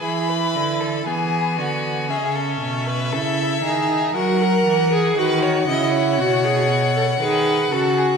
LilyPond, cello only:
\new Staff \with { instrumentName = "Cello" } { \clef bass \time 4/4 \key e \mixolydian \tempo 4 = 58 e8 d8 e8 d8 cis8 b,8 cis8 dis8 | fis8 e8 dis8 cis8 b,4 dis8 cis8 | }